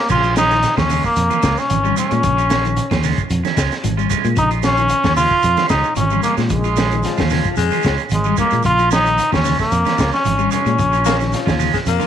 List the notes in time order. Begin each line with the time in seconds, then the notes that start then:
0.09 A#1 C#3 G#3 C#4 F4, kick, crash, high conga, low conga, shekere
0.23 F3 C#4 F4, closed hi-hat, shekere
0.36 G#3 C#4 D#4 F4, snare, closed hi-hat, high conga, shekere
0.51 D#3, snare, closed hi-hat, shekere
0.63 snare, closed hi-hat, high conga, shekere
0.77 D#2 F3 C#4 F4, kick, snare, high conga, shekere
0.89 C#3 G#3 C#4 F4, open hi-hat, low conga, shekere
1.04 A#3, kick, high conga, shekere
1.16 F2, closed hi-hat, shekere
1.30 C#4 F4, closed hi-hat, high conga, shekere
1.42 C#2 F3 G#3 F4, muted clean electric guitar stroke, kick, snare, closed hi-hat, low conga, shekere
1.57 C#4, snare, shekere
1.70 G#1, closed hi-hat, high conga, shekere
1.84 G3 C#4 F4, high conga, shekere
1.96 G#3 C#4 F4, closed hi-hat, low conga, shekere
2.11 A#2 G#3, closed hi-hat, shekere
2.23 A#1 C#3, kick, closed hi-hat, high conga, low conga, shekere
2.37 F3 C#4 F4, closed hi-hat, shekere
2.50 G#3 C#4 F4, snare, closed hi-hat, high conga, shekere
2.64 D#3, closed hi-hat, shekere
2.77 closed hi-hat, high conga, shekere
2.91 D#2 F3 C#4 F4, kick, snare, closed hi-hat, high conga, shekere
3.03 C#3 G#3 C#4 F4, open hi-hat, high conga, low conga, shekere
3.18 muted fingered electric bass stroke, kick, closed hi-hat, high conga, shekere
3.30 F2, closed hi-hat, shekere
3.44 C#4, muted clean electric guitar stroke, snare, closed hi-hat, high conga, shekere
3.56 C#2 F3 G#3 C#4 F4, kick, snare, closed hi-hat, shekere
3.72 snare, closed hi-hat, shekere
3.84 G#1 F3, closed hi-hat, high conga, shekere
3.97 G3 C#4 F4, shekere
4.10 G#3 C#4 F4, kick, closed hi-hat, low conga, shekere
4.24 A#2 G#3, closed hi-hat, shekere
4.37 A#1 C#3 D#4, kick, closed hi-hat, high conga, low conga, shekere
4.51 F3 C#4 F4, closed hi-hat, shekere
4.63 C#4 F4, snare, closed hi-hat, high conga, shekere
4.77 D#3, closed hi-hat, shekere
4.89 closed hi-hat, shekere
5.04 D#2 F3 C#4 F4, kick, snare, high conga, shekere
5.16 C#3 G#3 C#4 F4, open hi-hat, low conga, shekere
5.30 kick, high conga, shekere
5.43 F2, closed hi-hat, shekere
5.57 C#4 F4, snare, closed hi-hat, high conga, shekere
5.69 C#2 F3 G#3 C#4 D#4 F4, kick, snare, closed hi-hat, low conga, shekere
5.84 shekere
5.96 G#1 F3 C#4, closed hi-hat, high conga, shekere
6.10 G3 C#4 F4, high conga, shekere
6.23 G#3 A#3 C#4 F4, closed hi-hat, low conga, shekere
6.37 A#2 G#3, snare, closed hi-hat, shekere
6.49 A#1 C#3 G#3, kick, closed hi-hat, high conga, low conga, shekere
6.64 F3 C#4 F4, closed hi-hat, shekere
6.76 G#3 C#4 F4, snare, closed hi-hat, high conga, shekere
6.91 D#3, closed hi-hat, shekere
7.03 F3, snare, closed hi-hat, high conga, shekere
7.17 D#2 F3 C#4 F4, kick, snare, closed hi-hat, high conga, shekere
7.30 C#3 G#3 C#4 F4, snare, open hi-hat, high conga, low conga, shekere
7.44 muted fingered electric bass stroke, kick, closed hi-hat, high conga, shekere
7.56 F2 G#3, closed hi-hat, shekere
7.71 C#4 F4, closed hi-hat, high conga, shekere
7.82 C#2 F3 G#3 C#4 F4, kick, snare, closed hi-hat, shekere
7.97 closed hi-hat, shekere
8.09 G#1 G#3, muted clean electric guitar stroke, closed hi-hat, high conga, shekere
8.24 G3 C#4 F4, high conga, shekere
8.37 G#3 A#3 C#4 F4, kick, closed hi-hat, low conga, shekere
8.50 A#2 G#3, closed hi-hat, shekere
8.63 A#1 C#3 F4, kick, closed hi-hat, high conga, shekere
8.78 F3 C#4 F4, closed hi-hat, shekere
8.90 G#3 C#4 D#4 F4, snare, closed hi-hat, high conga, shekere
9.05 D#3, closed hi-hat, shekere
9.18 closed hi-hat, high conga, shekere
9.31 D#2 F3 C#4 F4, kick, snare, high conga, shekere
9.44 C#3 G#3 C#4 F4, open hi-hat, high conga, low conga, shekere
9.59 A#3, muted fingered electric bass stroke, kick, snare, high conga, shekere
9.72 F2, closed hi-hat, shekere
9.85 C#4 F4, snare, closed hi-hat, high conga, shekere
9.97 C#2 F3 G#3 C#4 F4, kick, snare, closed hi-hat, shekere
10.12 C#4, snare, shekere
10.25 G#1 F3, closed hi-hat, high conga, shekere
10.38 G3 C#4 F4, shekere
10.51 G#3 C#4 F4, closed hi-hat, low conga, shekere
10.66 A#2 G#3, closed hi-hat, shekere
10.79 A#1 C#3, kick, closed hi-hat, shekere
10.92 F3 C#4 F4, closed hi-hat, shekere
11.05 G#3 A#3 C#4 F4, snare, closed hi-hat, high conga, shekere
11.20 D#3, snare, closed hi-hat, shekere
11.32 F3, snare, closed hi-hat, shekere
11.46 D#2 F3 C#4 F4, kick, snare, closed hi-hat, high conga, shekere
11.59 C#3 G#3 C#4 F4, open hi-hat, high conga, low conga, shekere
11.73 G#3, kick, snare, closed hi-hat, high conga, shekere
11.86 F2 A#3, closed hi-hat, shekere
11.99 C#4 F4, closed hi-hat, high conga, shekere